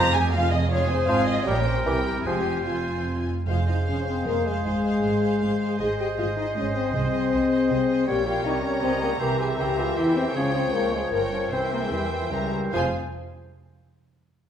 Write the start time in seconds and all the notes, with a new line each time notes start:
Already playing: F1 F2 G#3 F4 G4 F5 A#5
0.13 C4 G#4 G#5
0.31 G#3 F4 F5
0.51 C4 G#4 D#5 G#5
0.69 G#3 F4 G#4 C#5 F5
0.88 C4 G#4 C5 G#5
1.06 G#1 G#2 F3 C4 F4 C5 F5 G#5
1.10 F3
1.27 D#5
1.45 A#1 A#2 G3 C#4 G4 A#4 C#5 G5
1.65 C5
1.85 C2 C3 E3 G3 C4 E4 G4 A#4 G5
2.06 G4
2.24 F1 F2 F3 G#3 C4 F4 G4 G#4 C5 G#5
2.65 C4 F4 G#5
3.47 F1 F2 G#3 F4 G#4 C5 F5
3.67 D#4 G#4 C5 D#5 F5
3.87 F1 F2 C#4 G#4 C5 C#5 F5
4.06 C4 G#4 C5 F5
4.25 F1 F2 A#3 G#4 A#4 C5 F5
4.45 G#3 G#4 C5 F5
4.63 G#1 G#2 G#3 G#4 C5 F5
4.85 G#4 C5 F5
5.03 G#1 G#2 G#4 C5 F5
5.23 G#4 C5 F5
5.40 G#1 G#2 G#4 C5 F5
5.60 G#4 C5 F5
5.78 G#1 G#2 G#3 G#4 C5 D#5 G#5
5.98 G4 G#4 C5 D#5 G5
6.18 G#1 G#2 F4 G#4 C5 D#5 F5
6.36 D#4 G#4 C5 D#5
6.55 G#1 G#2 C#4 G#4 C5 C#5 D#5
6.73 C4 G#4 C5 D#5
6.92 C2 C3 C4 G#4 C5 D#5
7.11 G#4 C5 D#5
7.30 C2 C3 G#4 C5 D#5
7.51 G#4 C5 D#5
7.69 C2 C3 G#4 C5 D#5
7.88 G#4 C5 D#5
8.07 A#1 A#2 G3 G4 A#4 C#5 G5
8.26 G3 F4 A#4 C#5 F5 G5
8.43 C2 C3 G3 D#4 A#4 C#5 D#5 G5 A#5
8.62 G3 C#4 A#4 C#5 G5
8.80 C#2 C#3 G3 C4 A#4 C#5 D#5 G5
8.84 C5
9.00 G3 A#3 A#4 C#5 G5
9.19 C2 C3 E3 G4 A#4 C5 E5 G5 A#5
9.38 E3 G4 C5 G5 G#5
9.43 G#4
9.58 C#2 C#3 E3 G4 A#4 C5 G5 A#5
9.77 E3 F4 G4 C5 F5 G5
9.96 E2 E3 E4 G4 C5 E5 G5
10.16 E3 C4 G4 C5 G5
10.34 C#2 C#3 F3 C#4 G#4 C#5 F5
10.39 C#5
10.53 F3 C4 G#4 C#5 F5
10.57 C5
10.73 C#2 F3 A#3 G#4 A#4 C#5 F5
10.92 F3 G#3 G#4 C#5 F5
11.11 G1 G2 F3 A#3 A#4 C#5 G5
11.33 F3 C#4 A#4 C#5 G5
11.51 C2 C3 E3 C4 A#4 C5 E5 G5
11.72 E3 A#3 A#4 C5 G5
11.82 G#3 G#4
11.91 E2 E3 G3 G4 A#4 C5 G5
12.11 E3 A#4 C5 G5
12.22 F3 F4
12.32 C#2 C#3 E3 G3 G4 A#4 C5 E5 G5 A#5
12.53 E3 A#4 C5 G5
12.72 F1 F2 F3 F4 G#4 C5 F5 G#5